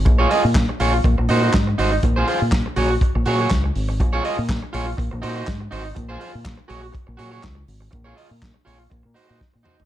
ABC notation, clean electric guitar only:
X:1
M:4/4
L:1/16
Q:"Swing 16ths" 1/4=122
K:Abmix
V:1 name="Clean electric guitar"
z [FAd] [FAe] z3 [FAd] z3 [EGc] [EGc] z2 [EGc] z | z [FAc] [FAc] z3 [GAd] z3 [GAd] [GAd] z4 | z [FAd] [FAe] z3 [FAd] z3 [EGc] [EGc] z2 [EGc] z | z [FAc] [FAc] z3 [GAd] z3 [GAd] [GAd] z4 |
z [FAd] [FAe] z3 [FAd] z3 [EGc] [EGc] z2 [EGc] z |]